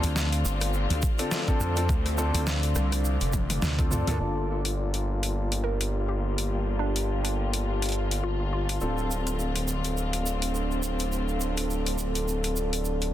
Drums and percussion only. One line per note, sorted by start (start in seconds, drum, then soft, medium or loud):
0.03 closed hi-hat medium
0.03 shaker soft
0.16 snare loud
0.16 shaker medium
0.33 closed hi-hat medium
0.33 shaker soft
0.45 shaker loud
0.61 cross-stick medium
0.61 closed hi-hat medium
0.61 shaker soft
0.74 shaker medium
0.90 closed hi-hat medium
0.90 shaker soft
1.02 kick loud
1.02 shaker medium
1.19 closed hi-hat medium
1.19 shaker soft
1.31 snare loud
1.31 shaker medium
1.48 kick medium
1.48 shaker soft
1.61 shaker medium
1.76 closed hi-hat medium
1.76 shaker soft
1.89 kick loud
1.89 shaker soft
2.06 cross-stick soft
2.06 closed hi-hat soft
2.06 shaker soft
2.18 shaker medium
2.35 closed hi-hat medium
2.35 shaker soft
2.47 snare loud
2.47 shaker medium
2.63 closed hi-hat medium
2.63 shaker soft
2.75 cross-stick medium
2.75 shaker medium
2.92 cross-stick medium
2.92 closed hi-hat medium
2.92 shaker soft
3.05 shaker medium
3.21 closed hi-hat medium
3.21 shaker soft
3.33 kick medium
3.33 high tom medium
3.33 shaker medium
3.50 closed hi-hat medium
3.50 mid tom medium
3.50 shaker soft
3.62 snare loud
3.62 mid tom medium
3.62 shaker soft
3.79 kick loud
3.79 closed hi-hat soft
3.79 shaker soft
3.91 mid tom loud
3.91 shaker medium
4.07 closed hi-hat medium
4.07 mid tom medium
4.07 shaker soft
4.65 closed hi-hat medium
4.94 closed hi-hat soft
5.23 closed hi-hat medium
5.52 closed hi-hat soft
5.81 closed hi-hat medium
6.38 closed hi-hat medium
6.96 closed hi-hat medium
7.25 closed hi-hat soft
7.54 closed hi-hat medium
7.82 closed hi-hat soft
7.86 closed hi-hat soft
7.89 closed hi-hat soft
7.92 closed hi-hat soft
8.11 closed hi-hat medium
8.69 closed hi-hat medium
8.81 shaker medium
8.98 shaker soft
9.11 shaker medium
9.27 closed hi-hat medium
9.27 shaker soft
9.39 shaker soft
9.56 closed hi-hat soft
9.56 shaker soft
9.68 shaker medium
9.84 closed hi-hat medium
9.84 shaker soft
9.97 shaker medium
10.13 closed hi-hat soft
10.13 shaker soft
10.26 shaker medium
10.42 closed hi-hat medium
10.42 shaker soft
10.55 shaker soft
10.71 shaker soft
10.83 shaker medium
10.99 closed hi-hat medium
10.99 shaker soft
11.12 shaker soft
11.28 shaker soft
11.41 shaker medium
11.57 closed hi-hat medium
11.57 shaker soft
11.70 shaker soft
11.86 closed hi-hat soft
11.86 shaker soft
11.98 shaker medium
12.15 closed hi-hat medium
12.15 shaker soft
12.28 shaker soft
12.44 closed hi-hat soft
12.44 shaker soft
12.56 shaker medium
12.73 closed hi-hat medium
12.73 shaker soft
12.85 shaker soft
13.01 closed hi-hat soft
13.01 shaker soft